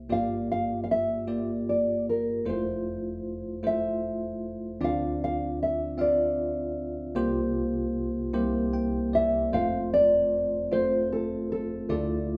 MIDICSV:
0, 0, Header, 1, 3, 480
1, 0, Start_track
1, 0, Key_signature, -1, "major"
1, 0, Tempo, 786370
1, 61, Time_signature, 6, 3, 24, 8
1, 7551, End_track
2, 0, Start_track
2, 0, Title_t, "Nylon-string guitar"
2, 0, Program_c, 0, 24
2, 0, Note_on_c, 0, 76, 74
2, 72, Note_off_c, 0, 76, 0
2, 75, Note_on_c, 0, 77, 78
2, 308, Note_off_c, 0, 77, 0
2, 315, Note_on_c, 0, 77, 78
2, 493, Note_off_c, 0, 77, 0
2, 511, Note_on_c, 0, 77, 57
2, 548, Note_off_c, 0, 77, 0
2, 557, Note_on_c, 0, 76, 78
2, 1030, Note_off_c, 0, 76, 0
2, 1033, Note_on_c, 0, 74, 70
2, 1252, Note_off_c, 0, 74, 0
2, 1278, Note_on_c, 0, 70, 69
2, 1518, Note_off_c, 0, 70, 0
2, 1522, Note_on_c, 0, 72, 68
2, 2238, Note_on_c, 0, 76, 86
2, 2253, Note_off_c, 0, 72, 0
2, 2954, Note_off_c, 0, 76, 0
2, 2956, Note_on_c, 0, 77, 78
2, 3191, Note_off_c, 0, 77, 0
2, 3198, Note_on_c, 0, 77, 81
2, 3413, Note_off_c, 0, 77, 0
2, 3435, Note_on_c, 0, 76, 70
2, 3666, Note_off_c, 0, 76, 0
2, 3669, Note_on_c, 0, 74, 73
2, 5318, Note_off_c, 0, 74, 0
2, 5585, Note_on_c, 0, 76, 81
2, 5805, Note_off_c, 0, 76, 0
2, 5824, Note_on_c, 0, 77, 82
2, 6044, Note_off_c, 0, 77, 0
2, 6065, Note_on_c, 0, 74, 80
2, 6547, Note_on_c, 0, 72, 91
2, 6556, Note_off_c, 0, 74, 0
2, 6788, Note_off_c, 0, 72, 0
2, 6791, Note_on_c, 0, 69, 69
2, 7024, Note_off_c, 0, 69, 0
2, 7031, Note_on_c, 0, 69, 71
2, 7248, Note_off_c, 0, 69, 0
2, 7271, Note_on_c, 0, 69, 64
2, 7551, Note_off_c, 0, 69, 0
2, 7551, End_track
3, 0, Start_track
3, 0, Title_t, "Tine electric piano"
3, 0, Program_c, 1, 4
3, 0, Control_c, 1, 64, 127
3, 56, Note_on_c, 1, 58, 58
3, 59, Note_on_c, 1, 65, 56
3, 60, Note_on_c, 1, 43, 49
3, 60, Note_on_c, 1, 67, 54
3, 61, Note_on_c, 1, 31, 47
3, 63, Note_on_c, 1, 74, 63
3, 70, Control_c, 1, 64, 0
3, 176, Control_c, 1, 64, 127
3, 668, Note_off_c, 1, 58, 0
3, 669, Note_off_c, 1, 65, 0
3, 670, Note_off_c, 1, 67, 0
3, 672, Note_off_c, 1, 74, 0
3, 778, Note_on_c, 1, 65, 49
3, 779, Note_on_c, 1, 58, 56
3, 780, Note_on_c, 1, 67, 49
3, 781, Note_on_c, 1, 74, 59
3, 1389, Note_off_c, 1, 65, 0
3, 1390, Note_off_c, 1, 58, 0
3, 1390, Note_off_c, 1, 67, 0
3, 1391, Note_off_c, 1, 74, 0
3, 1479, Note_off_c, 1, 31, 0
3, 1479, Note_off_c, 1, 43, 0
3, 1498, Note_on_c, 1, 64, 56
3, 1499, Note_on_c, 1, 57, 62
3, 1500, Note_on_c, 1, 29, 50
3, 1502, Note_on_c, 1, 41, 50
3, 1503, Note_on_c, 1, 72, 63
3, 1504, Note_on_c, 1, 65, 60
3, 1512, Control_c, 1, 64, 0
3, 1600, Control_c, 1, 64, 127
3, 2109, Note_off_c, 1, 57, 0
3, 2109, Note_off_c, 1, 64, 0
3, 2111, Note_off_c, 1, 65, 0
3, 2111, Note_off_c, 1, 72, 0
3, 2215, Note_on_c, 1, 57, 55
3, 2217, Note_on_c, 1, 65, 51
3, 2218, Note_on_c, 1, 64, 49
3, 2221, Note_on_c, 1, 72, 63
3, 2826, Note_off_c, 1, 57, 0
3, 2827, Note_off_c, 1, 64, 0
3, 2827, Note_off_c, 1, 65, 0
3, 2829, Note_off_c, 1, 72, 0
3, 2916, Note_off_c, 1, 29, 0
3, 2917, Note_off_c, 1, 41, 0
3, 2934, Note_on_c, 1, 60, 68
3, 2934, Note_on_c, 1, 62, 64
3, 2935, Note_on_c, 1, 38, 50
3, 2935, Note_on_c, 1, 50, 55
3, 2937, Note_on_c, 1, 65, 58
3, 2938, Note_on_c, 1, 74, 73
3, 2950, Control_c, 1, 64, 0
3, 3052, Control_c, 1, 64, 127
3, 3545, Note_off_c, 1, 60, 0
3, 3545, Note_off_c, 1, 62, 0
3, 3546, Note_off_c, 1, 65, 0
3, 3547, Note_off_c, 1, 74, 0
3, 3648, Note_on_c, 1, 60, 62
3, 3650, Note_on_c, 1, 76, 53
3, 3653, Note_on_c, 1, 65, 53
3, 3656, Note_on_c, 1, 77, 63
3, 4261, Note_off_c, 1, 60, 0
3, 4262, Note_off_c, 1, 76, 0
3, 4263, Note_off_c, 1, 65, 0
3, 4265, Note_off_c, 1, 77, 0
3, 4351, Note_off_c, 1, 38, 0
3, 4351, Note_off_c, 1, 50, 0
3, 4365, Note_on_c, 1, 58, 78
3, 4368, Note_on_c, 1, 48, 68
3, 4368, Note_on_c, 1, 65, 72
3, 4369, Note_on_c, 1, 36, 65
3, 4371, Note_on_c, 1, 72, 91
3, 4372, Note_on_c, 1, 67, 79
3, 4385, Control_c, 1, 64, 0
3, 4486, Control_c, 1, 64, 127
3, 4979, Note_off_c, 1, 58, 0
3, 4981, Note_off_c, 1, 65, 0
3, 4982, Note_off_c, 1, 67, 0
3, 4982, Note_off_c, 1, 72, 0
3, 5068, Note_off_c, 1, 48, 0
3, 5069, Note_off_c, 1, 36, 0
3, 5087, Note_on_c, 1, 64, 67
3, 5088, Note_on_c, 1, 58, 70
3, 5091, Note_on_c, 1, 36, 71
3, 5091, Note_on_c, 1, 48, 65
3, 5091, Note_on_c, 1, 67, 69
3, 5091, Note_on_c, 1, 72, 75
3, 5107, Control_c, 1, 64, 0
3, 5205, Control_c, 1, 64, 127
3, 5331, Note_on_c, 1, 79, 62
3, 5558, Note_off_c, 1, 79, 0
3, 5575, Note_on_c, 1, 74, 62
3, 5700, Note_off_c, 1, 64, 0
3, 5701, Note_off_c, 1, 58, 0
3, 5702, Note_off_c, 1, 67, 0
3, 5702, Note_off_c, 1, 72, 0
3, 5790, Note_off_c, 1, 36, 0
3, 5790, Note_off_c, 1, 48, 0
3, 5800, Note_off_c, 1, 74, 0
3, 5815, Note_on_c, 1, 57, 64
3, 5818, Note_on_c, 1, 29, 53
3, 5818, Note_on_c, 1, 60, 61
3, 5818, Note_on_c, 1, 72, 73
3, 5819, Note_on_c, 1, 41, 51
3, 5819, Note_on_c, 1, 65, 63
3, 5825, Control_c, 1, 64, 0
3, 5922, Control_c, 1, 64, 127
3, 6424, Note_off_c, 1, 57, 0
3, 6426, Note_off_c, 1, 60, 0
3, 6426, Note_off_c, 1, 65, 0
3, 6426, Note_off_c, 1, 72, 0
3, 6541, Note_on_c, 1, 60, 53
3, 6541, Note_on_c, 1, 65, 55
3, 6543, Note_on_c, 1, 57, 61
3, 6547, Note_on_c, 1, 72, 65
3, 7147, Note_off_c, 1, 60, 0
3, 7147, Note_off_c, 1, 65, 0
3, 7148, Note_off_c, 1, 57, 0
3, 7150, Note_off_c, 1, 72, 0
3, 7233, Note_off_c, 1, 29, 0
3, 7234, Note_off_c, 1, 41, 0
3, 7258, Note_on_c, 1, 57, 69
3, 7260, Note_on_c, 1, 38, 58
3, 7261, Note_on_c, 1, 64, 63
3, 7262, Note_on_c, 1, 50, 56
3, 7263, Note_on_c, 1, 65, 60
3, 7263, Note_on_c, 1, 74, 76
3, 7265, Control_c, 1, 64, 0
3, 7374, Control_c, 1, 64, 127
3, 7551, Note_off_c, 1, 38, 0
3, 7551, Note_off_c, 1, 50, 0
3, 7551, Note_off_c, 1, 57, 0
3, 7551, Note_off_c, 1, 64, 0
3, 7551, Note_off_c, 1, 65, 0
3, 7551, Note_off_c, 1, 74, 0
3, 7551, End_track
0, 0, End_of_file